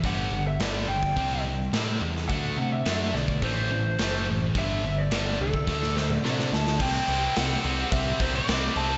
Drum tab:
CC |----------------|----------------|----------------|x-x-x-x-x-x-x-x-|
HH |o---o---o---o---|o---o---o---o---|o---o-----------|----------------|
SD |----o-------o--o|----o-o-----o---|----o---ooo-oooo|----o-------o---|
T2 |----------------|----------------|-----------o----|----------------|
BD |o------oo-------|o------oo-------|o------oo-------|o-------o-o-----|